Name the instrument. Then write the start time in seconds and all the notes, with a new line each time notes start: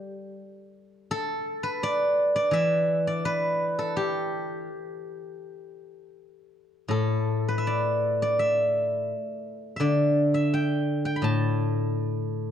guzheng
Already playing: G3 G4 A4
1.11 A4
1.63 B4
1.83 D5
2.36 D5
2.51 E3 E5
3.07 D5
3.25 B4
3.79 A4
3.97 G4
6.88 A2 A4
7.48 B4
7.58 E5
7.67 D5
8.22 D5
8.39 E5
9.76 D3 E5
9.80 D5
10.34 E5
10.54 G5
11.05 G5
11.16 B5
11.22 A2 A5